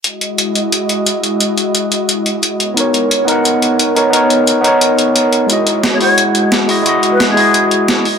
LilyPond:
<<
  \new Staff \with { instrumentName = "Flute" } { \time 4/4 \key e \lydian \tempo 4 = 176 r1 | r1 | r1 | r1 |
r4 r16 cis''16 cis''8 r2 | r8. b'8 gis'4 r4. r16 | }
  \new Staff \with { instrumentName = "Analog synth pad" } { \time 4/4 \key e \lydian <gis e' fis' dis''>1~ | <gis e' fis' dis''>2.~ <gis e' fis' dis''>8 <b dis' ais' cis''>8~ | <b dis' ais' cis''>1~ | <b dis' ais' cis''>1 |
<gis e' fis' dis''>1~ | <gis e' fis' dis''>2.~ <gis e' fis' dis''>8 <b dis' ais' cis''>8 | }
  \new Staff \with { instrumentName = "Tine electric piano" } { \time 4/4 \key e \lydian r1 | r1 | <b dis' ais' cis''>4. <b dis' ais' fis''>2 <b dis' ais' cis''>8 | <b dis' ais' cis''>4. <b dis' ais' cis''>2~ <b dis' ais' cis''>8 |
<gis e' fis' dis''>4. <gis e' fis' fis''>2 <gis e' fis' dis''>8 | <gis e' fis' dis''>4. <gis e' fis' dis''>2 r8 | }
  \new DrumStaff \with { instrumentName = "Drums" } \drummode { \time 4/4 hh8 hh8 hh8 hh8 hh8 hh8 hh8 hh8 | hh8 hh8 hh8 hh8 hh8 hh8 hh8 hh8 | hh8 hh8 hh8 hh8 hh8 hh8 hh8 hh8 | hh8 hh8 hh8 hh8 hh8 hh8 hh8 hh8 |
hh8 hh8 <hh sn>8 hho8 hh8 hh8 <hh sn>8 hho8 | hh8 hh8 <hh sn>8 hho8 hh8 hh8 <hh sn>8 hho8 | }
>>